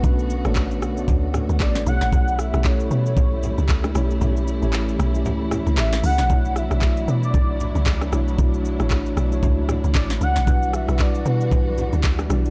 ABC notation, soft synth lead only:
X:1
M:4/4
L:1/16
Q:"Swing 16ths" 1/4=115
K:Amix
V:1 name="Soft synth lead"
z12 d2 f2- | f2 e2 c3 c4 z4 z | z12 e2 f2- | f2 e4 d d6 z3 |
z12 d2 f2- | f2 e2 d2 B8 z2 |]